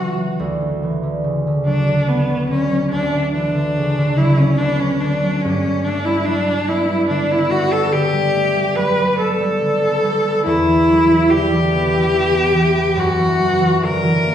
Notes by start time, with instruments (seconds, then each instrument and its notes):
Already playing: harp C#3 E3 F#3 C#4, cello F#4
0.18 harp F#3
0.39 harp D2
0.61 harp D3
0.83 harp E3
1.03 harp D3
1.24 harp C#3
1.47 harp D3
1.66 harp F#3, cello D4
1.87 harp D3
2.08 cello B3, harp B3
2.30 harp F#3
2.49 harp D3, cello C#4
2.71 harp F#3
2.90 harp D2, cello D4
3.13 harp D3
3.33 harp E3, cello D4
3.54 harp D3
3.77 harp C#3
3.98 harp D3
4.17 harp F#3, cello E4
4.38 harp D3, cello C#4
4.58 harp B3, cello D4
4.79 harp F#3, cello C#4
5.00 harp D3, cello D4
5.24 harp F#3
5.41 harp G2, cello C#4
5.64 harp G3
5.84 harp A3, cello D4
6.05 harp G3, cello E4
6.25 harp F#3, cello D4
6.47 harp G3
6.68 harp B3, cello E4
6.89 harp G3
7.08 harp D3, cello D4
7.31 harp B3, cello E4
7.50 harp G3, cello F#4
7.72 harp B3, cello A4
7.92 harp D3, cello G4
8.13 harp G3
8.35 harp A3
8.56 harp G3
8.75 harp F#3, cello B4
8.99 harp G3
9.19 harp B3, cello A4
9.40 harp G3
9.61 harp D3
9.82 harp B3
10.04 harp G3
10.25 harp B3
10.46 harp E2, cello E4
10.67 harp E3
10.90 harp F#3
11.10 harp E3
11.30 harp D3, cello G4
11.52 harp E3
11.72 harp B3
11.93 harp E3
12.13 harp E4
12.35 harp B3
12.55 harp E3
12.76 harp B3
12.96 harp F#2, cello F#4
13.19 harp E3
13.39 harp F#3
13.61 harp E3
13.82 harp D3, cello A#4
14.04 harp E3
14.25 harp A#3